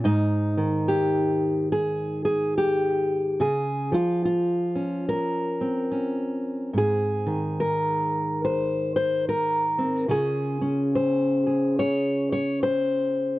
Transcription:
0.04 3.35 G#2 medium
0.04 1.72 D#4 medium
0.57 3.39 D#3 medium
0.88 1.72 G4 medium
1.72 2.24 G#4 medium
2.25 2.56 G#4 medium
2.58 3.40 G4 medium
3.40 3.92 C#3 medium
3.40 3.92 G#4 medium
3.92 6.71 F3 medium
3.92 4.24 F4 medium
4.25 5.08 F4 medium
4.75 5.90 C#4 soft
5.09 6.75 A#4 medium
5.61 7.63 C4 soft
5.91 6.71 C#4 soft
6.73 10.05 G#2 medium
6.78 8.43 G#4 medium
7.26 10.09 D#3 medium
7.60 8.43 A#4 medium
8.45 8.95 C5 medium
8.96 9.26 C5 medium
9.29 10.11 A#4 medium
9.78 10.09 C4 soft
10.08 13.39 C#3 medium
10.08 10.60 C#4 soft
10.08 13.39 F4 soft
10.08 11.45 G#4 medium
10.61 13.39 C#4 medium
10.95 11.78 C5 medium
11.47 13.39 G#4 soft
11.79 12.30 C#5 loud
12.32 12.62 C#5 loud
12.63 13.39 C5 loud

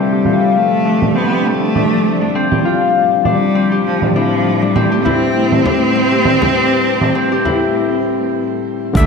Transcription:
0.00 4.12 C3 medium
0.00 4.11 D3 medium
0.00 4.11 F3 medium
0.00 0.58 G3 medium
0.00 4.12 G3 medium
0.00 4.11 A3 medium
0.00 1.15 C4 medium
0.00 0.85 D4 medium
0.00 4.11 D4 medium
0.00 0.31 E4 medium
0.00 0.12 G4 medium
0.00 4.11 D5 medium
0.00 4.13 E5 medium
0.12 1.31 G4 medium
0.12 cabasa soft
0.25 2.65 F4 medium
0.25 low conga medium
0.25 cabasa medium
0.56 1.19 A3 loud
0.73 cabasa soft
0.85 1.75 D4 medium
1.02 low conga medium
1.02 cabasa soft
1.15 1.49 B3 loud
1.15 2.35 C4 medium
1.32 2.51 G4 medium
1.47 2.67 A3 loud
1.47 cabasa medium
1.63 cabasa soft
1.75 2.21 D4 medium
1.75 low conga medium
1.75 cabasa soft
1.93 cabasa soft
2.06 cabasa medium
2.22 3.25 D4 medium
2.35 3.55 C4 medium
2.35 cabasa soft
2.51 3.71 G4 medium
2.51 low conga medium
2.51 cabasa soft
2.65 5.11 F4 medium
2.65 cabasa medium
2.83 cabasa soft
2.96 cabasa soft
3.13 cabasa soft
3.25 3.82 G3 medium
3.25 4.15 D4 medium
3.25 low conga medium
3.25 cabasa medium
3.55 4.75 C4 medium
3.55 cabasa soft
3.72 4.91 G4 medium
3.72 cabasa soft
3.86 4.14 F3 medium
3.86 cabasa medium
4.02 low conga medium
4.02 cabasa soft
4.13 7.74 A2 medium
4.13 7.75 D3 medium
4.13 4.64 F3 medium
4.13 7.75 G3 medium
4.13 7.71 A3 medium
4.13 7.71 C4 medium
4.13 7.76 C4 medium
4.13 4.61 D4 medium
4.13 7.76 E4 medium
4.13 6.52 G4 medium
4.13 7.71 B4 medium
4.62 5.08 G3 medium
4.62 5.65 D4 medium
4.76 5.95 C4 medium
4.76 low conga medium
4.76 cabasa soft
4.92 6.11 G4 medium
5.05 8.36 C4 loud
5.05 7.45 E4 medium
5.05 frame drum medium
5.52 low conga medium
5.52 cabasa soft
5.65 6.55 D4 medium
5.65 frame drum medium
5.83 cabasa soft
5.96 7.15 C4 medium
6.12 7.31 G4 medium
6.25 low conga medium
6.25 cabasa medium
6.42 frame drum medium
6.55 7.01 D4 medium
6.55 cabasa soft
6.73 cabasa soft
6.86 cabasa medium
7.01 8.95 D4 medium
7.01 low conga medium
7.01 cabasa soft
7.15 9.06 C4 medium
7.32 9.06 G4 medium
7.32 cabasa soft
7.45 9.06 E4 medium
7.45 frame drum medium
7.45 cabasa medium
8.93 9.06 D2 loud
8.93 9.06 C3 medium
8.93 9.06 D3 medium
8.93 9.06 G3 medium
8.93 9.06 A3 loud
8.93 9.06 D4 medium
8.93 9.06 E5 loud
8.93 kick loud
8.93 cabasa soft

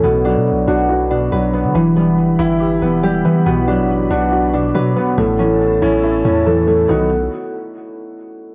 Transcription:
0.00 0.37 B1 loud
0.00 1.09 B2 medium
0.00 3.15 A3 medium
0.00 1.53 B3 medium
0.00 0.31 C#4 medium
0.00 1.57 E4 medium
0.00 1.73 F#4 medium
0.00 1.80 A4 medium
0.00 1.73 B4 medium
0.00 1.73 D5 medium
0.00 5.14 B5 medium
0.25 1.31 F#3 medium
0.25 1.10 D4 medium
0.36 0.53 B2 loud
0.52 0.67 B1 loud
0.68 1.29 B1 loud
0.68 1.75 D4 medium
0.68 3.09 F#4 medium
0.89 1.75 F#4 medium
1.11 1.75 B2 medium
1.11 3.67 D4 medium
1.32 1.66 B1 loud
1.32 1.75 F#3 medium
1.32 3.37 B4 medium
1.53 1.75 B3 medium
1.53 1.96 B3 medium
1.64 1.74 D3 loud
1.75 2.19 E1 loud
1.75 2.80 E3 medium
1.75 3.24 E3 medium
1.75 3.44 G4 medium
1.75 5.14 B4 medium
1.75 3.44 E5 medium
1.96 3.02 G3 medium
1.96 2.82 B3 medium
2.18 2.30 F#1 loud
2.28 2.39 E1 loud
2.39 2.80 G1 loud
2.39 3.46 E4 loud
2.39 5.00 E4 medium
2.60 3.46 G4 medium
2.82 3.23 E1 loud
2.82 3.46 E3 medium
2.82 3.46 B3 medium
3.03 3.46 G3 medium
3.03 4.17 G4 medium
3.25 3.51 E3 medium
3.25 3.46 B3 medium
3.46 3.80 B1 loud
3.46 4.52 B2 medium
3.46 4.96 B3 loud
3.46 5.16 F#4 medium
3.46 5.16 D5 medium
3.68 4.73 F#3 medium
3.68 4.53 D4 medium
3.78 4.09 A1 loud
4.10 4.72 B1 loud
4.10 5.18 D4 loud
4.10 6.54 F#4 medium
4.32 5.18 F#4 medium
4.53 5.18 B2 medium
4.53 5.45 D4 medium
4.75 4.95 B2 loud
4.75 5.18 F#3 medium
4.75 6.80 B4 medium
4.96 5.18 B3 medium
4.96 6.87 B3 medium
5.18 5.79 A1 loud
5.18 6.23 A2 medium
5.18 6.46 A3 loud
5.18 6.87 E4 medium
5.18 6.87 A4 medium
5.18 6.87 C#5 medium
5.18 6.87 A5 medium
5.39 6.45 E3 medium
5.39 6.24 C#4 medium
5.82 6.23 A1 loud
5.82 6.89 C#4 loud
5.82 6.89 E4 medium
6.03 6.89 E4 medium
6.25 6.87 E2 loud
6.25 6.89 A2 medium
6.25 6.89 C#4 medium
6.46 6.89 E3 medium
6.46 6.89 A4 medium
6.67 6.89 A3 medium
6.88 7.29 B1 loud
6.88 7.09 B2 medium
6.88 7.09 D#3 medium
6.88 7.09 F#3 medium
6.88 7.09 B3 medium
6.88 7.09 D#4 medium
6.88 7.09 F#4 loud
6.88 7.09 D#5 medium
6.88 7.09 F#5 medium

